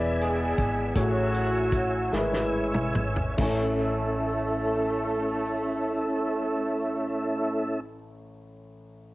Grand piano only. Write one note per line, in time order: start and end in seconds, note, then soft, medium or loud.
0.00 0.91 E3 medium
0.00 0.76 B3 medium
0.00 0.77 E4 medium
0.00 0.77 G#4 medium
0.00 0.81 D5 medium
0.95 2.08 A2 medium
0.95 1.93 A3 medium
0.95 1.93 E4 medium
0.95 1.93 G#4 medium
0.95 1.93 C#5 medium
2.12 3.17 G#3 medium
2.12 3.17 E4 soft
2.12 3.18 G#4 soft
2.12 2.20 A#4 soft
2.20 3.21 B4 medium
3.37 7.83 A1 medium
3.37 7.80 A3 medium
3.37 7.83 E4 medium
3.37 7.83 G#5 medium
3.42 7.85 C#5 medium